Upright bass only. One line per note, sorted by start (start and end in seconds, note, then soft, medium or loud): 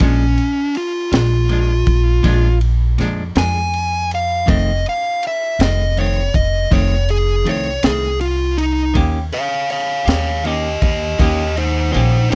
0.01 0.35 A#1 medium
1.12 1.83 A#1 medium
1.87 2.22 A#1 medium
2.24 2.95 A#1 loud
2.99 3.33 F2 medium
3.36 4.44 F2 medium
4.48 4.83 F1 medium
5.59 6.30 F1 medium
6.34 6.69 F1 medium
6.71 7.42 F1 loud
7.45 7.80 C2 medium
7.83 8.91 C2 medium
8.95 9.30 D#2 medium
10.07 10.78 D#2 medium
10.82 11.16 D#2 medium
11.19 11.90 D#2 loud
11.95 12.29 A#1 medium